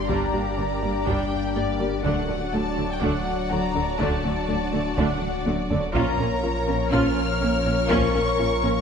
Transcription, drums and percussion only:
0, 0, Header, 1, 2, 480
1, 0, Start_track
1, 0, Tempo, 487805
1, 97, Time_signature, 4, 2, 24, 8
1, 8670, End_track
2, 0, Start_track
2, 0, Title_t, "Taiko and cinematic ensemble drums"
2, 92, Note_on_c, 9, 41, 76
2, 191, Note_off_c, 9, 41, 0
2, 1053, Note_on_c, 9, 41, 67
2, 1152, Note_off_c, 9, 41, 0
2, 2014, Note_on_c, 9, 41, 74
2, 2113, Note_off_c, 9, 41, 0
2, 2974, Note_on_c, 9, 41, 68
2, 3072, Note_off_c, 9, 41, 0
2, 3937, Note_on_c, 9, 41, 82
2, 4036, Note_off_c, 9, 41, 0
2, 4896, Note_on_c, 9, 41, 71
2, 4994, Note_off_c, 9, 41, 0
2, 5135, Note_on_c, 9, 47, 65
2, 5234, Note_off_c, 9, 47, 0
2, 5377, Note_on_c, 9, 48, 88
2, 5475, Note_off_c, 9, 48, 0
2, 5614, Note_on_c, 9, 43, 84
2, 5712, Note_off_c, 9, 43, 0
2, 5856, Note_on_c, 9, 41, 84
2, 5955, Note_off_c, 9, 41, 0
2, 6812, Note_on_c, 9, 41, 71
2, 6910, Note_off_c, 9, 41, 0
2, 7773, Note_on_c, 9, 41, 94
2, 7871, Note_off_c, 9, 41, 0
2, 8670, End_track
0, 0, End_of_file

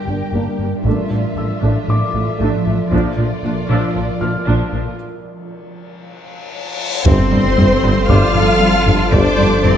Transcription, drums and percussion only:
0, 0, Header, 1, 2, 480
1, 0, Start_track
1, 0, Tempo, 517241
1, 793, Time_signature, 4, 2, 24, 8
1, 9071, End_track
2, 0, Start_track
2, 0, Title_t, "Taiko and cinematic ensemble drums"
2, 2711, Note_on_c, 9, 41, 64
2, 2804, Note_off_c, 9, 41, 0
2, 6550, Note_on_c, 9, 41, 118
2, 6643, Note_off_c, 9, 41, 0
2, 6792, Note_on_c, 9, 43, 64
2, 6885, Note_off_c, 9, 43, 0
2, 7031, Note_on_c, 9, 43, 79
2, 7124, Note_off_c, 9, 43, 0
2, 7273, Note_on_c, 9, 37, 47
2, 7366, Note_off_c, 9, 37, 0
2, 7511, Note_on_c, 9, 41, 89
2, 7604, Note_off_c, 9, 41, 0
2, 8231, Note_on_c, 9, 43, 66
2, 8324, Note_off_c, 9, 43, 0
2, 8469, Note_on_c, 9, 41, 119
2, 8562, Note_off_c, 9, 41, 0
2, 8711, Note_on_c, 9, 43, 63
2, 8804, Note_off_c, 9, 43, 0
2, 8950, Note_on_c, 9, 43, 76
2, 9043, Note_off_c, 9, 43, 0
2, 9071, End_track
0, 0, End_of_file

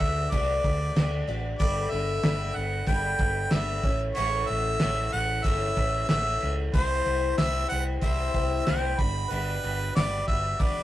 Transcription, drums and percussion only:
0, 0, Header, 1, 2, 480
1, 0, Start_track
1, 0, Key_signature, 1, "major"
1, 0, Tempo, 642398
1, 1200, Time_signature, 4, 2, 24, 8
1, 8093, End_track
2, 0, Start_track
2, 0, Title_t, "Drums"
2, 4, Note_on_c, 9, 36, 83
2, 4, Note_on_c, 9, 49, 66
2, 78, Note_off_c, 9, 36, 0
2, 79, Note_off_c, 9, 49, 0
2, 241, Note_on_c, 9, 49, 79
2, 243, Note_on_c, 9, 36, 94
2, 315, Note_off_c, 9, 49, 0
2, 317, Note_off_c, 9, 36, 0
2, 480, Note_on_c, 9, 36, 96
2, 485, Note_on_c, 9, 49, 62
2, 555, Note_off_c, 9, 36, 0
2, 560, Note_off_c, 9, 49, 0
2, 719, Note_on_c, 9, 49, 91
2, 722, Note_on_c, 9, 38, 116
2, 793, Note_off_c, 9, 49, 0
2, 797, Note_off_c, 9, 38, 0
2, 959, Note_on_c, 9, 49, 60
2, 1034, Note_off_c, 9, 49, 0
2, 1196, Note_on_c, 9, 36, 112
2, 1197, Note_on_c, 9, 49, 88
2, 1270, Note_off_c, 9, 36, 0
2, 1272, Note_off_c, 9, 49, 0
2, 1436, Note_on_c, 9, 49, 57
2, 1510, Note_off_c, 9, 49, 0
2, 1667, Note_on_c, 9, 49, 79
2, 1671, Note_on_c, 9, 38, 123
2, 1742, Note_off_c, 9, 49, 0
2, 1746, Note_off_c, 9, 38, 0
2, 1912, Note_on_c, 9, 49, 59
2, 1987, Note_off_c, 9, 49, 0
2, 2139, Note_on_c, 9, 49, 76
2, 2147, Note_on_c, 9, 36, 102
2, 2214, Note_off_c, 9, 49, 0
2, 2221, Note_off_c, 9, 36, 0
2, 2380, Note_on_c, 9, 49, 57
2, 2386, Note_on_c, 9, 36, 90
2, 2454, Note_off_c, 9, 49, 0
2, 2461, Note_off_c, 9, 36, 0
2, 2619, Note_on_c, 9, 49, 79
2, 2623, Note_on_c, 9, 38, 113
2, 2694, Note_off_c, 9, 49, 0
2, 2698, Note_off_c, 9, 38, 0
2, 2862, Note_on_c, 9, 49, 54
2, 2866, Note_on_c, 9, 36, 98
2, 2937, Note_off_c, 9, 49, 0
2, 2941, Note_off_c, 9, 36, 0
2, 3098, Note_on_c, 9, 49, 79
2, 3173, Note_off_c, 9, 49, 0
2, 3341, Note_on_c, 9, 49, 56
2, 3415, Note_off_c, 9, 49, 0
2, 3582, Note_on_c, 9, 49, 83
2, 3585, Note_on_c, 9, 38, 110
2, 3656, Note_off_c, 9, 49, 0
2, 3660, Note_off_c, 9, 38, 0
2, 3823, Note_on_c, 9, 49, 57
2, 3897, Note_off_c, 9, 49, 0
2, 4064, Note_on_c, 9, 49, 82
2, 4070, Note_on_c, 9, 36, 102
2, 4138, Note_off_c, 9, 49, 0
2, 4144, Note_off_c, 9, 36, 0
2, 4308, Note_on_c, 9, 49, 71
2, 4311, Note_on_c, 9, 36, 83
2, 4383, Note_off_c, 9, 49, 0
2, 4386, Note_off_c, 9, 36, 0
2, 4546, Note_on_c, 9, 49, 85
2, 4550, Note_on_c, 9, 38, 110
2, 4621, Note_off_c, 9, 49, 0
2, 4625, Note_off_c, 9, 38, 0
2, 4785, Note_on_c, 9, 49, 61
2, 4860, Note_off_c, 9, 49, 0
2, 5032, Note_on_c, 9, 49, 87
2, 5034, Note_on_c, 9, 36, 123
2, 5107, Note_off_c, 9, 49, 0
2, 5108, Note_off_c, 9, 36, 0
2, 5274, Note_on_c, 9, 49, 61
2, 5348, Note_off_c, 9, 49, 0
2, 5512, Note_on_c, 9, 49, 90
2, 5516, Note_on_c, 9, 38, 117
2, 5587, Note_off_c, 9, 49, 0
2, 5591, Note_off_c, 9, 38, 0
2, 5752, Note_on_c, 9, 49, 60
2, 5826, Note_off_c, 9, 49, 0
2, 5987, Note_on_c, 9, 49, 71
2, 5994, Note_on_c, 9, 36, 99
2, 6062, Note_off_c, 9, 49, 0
2, 6069, Note_off_c, 9, 36, 0
2, 6232, Note_on_c, 9, 49, 63
2, 6235, Note_on_c, 9, 36, 85
2, 6307, Note_off_c, 9, 49, 0
2, 6310, Note_off_c, 9, 36, 0
2, 6474, Note_on_c, 9, 49, 84
2, 6478, Note_on_c, 9, 38, 112
2, 6549, Note_off_c, 9, 49, 0
2, 6552, Note_off_c, 9, 38, 0
2, 6715, Note_on_c, 9, 36, 100
2, 6715, Note_on_c, 9, 49, 54
2, 6790, Note_off_c, 9, 36, 0
2, 6790, Note_off_c, 9, 49, 0
2, 6952, Note_on_c, 9, 49, 81
2, 7027, Note_off_c, 9, 49, 0
2, 7199, Note_on_c, 9, 49, 55
2, 7273, Note_off_c, 9, 49, 0
2, 7443, Note_on_c, 9, 49, 84
2, 7446, Note_on_c, 9, 38, 124
2, 7517, Note_off_c, 9, 49, 0
2, 7521, Note_off_c, 9, 38, 0
2, 7681, Note_on_c, 9, 36, 80
2, 7685, Note_on_c, 9, 49, 57
2, 7755, Note_off_c, 9, 36, 0
2, 7760, Note_off_c, 9, 49, 0
2, 7920, Note_on_c, 9, 36, 113
2, 7923, Note_on_c, 9, 49, 73
2, 7995, Note_off_c, 9, 36, 0
2, 7998, Note_off_c, 9, 49, 0
2, 8093, End_track
0, 0, End_of_file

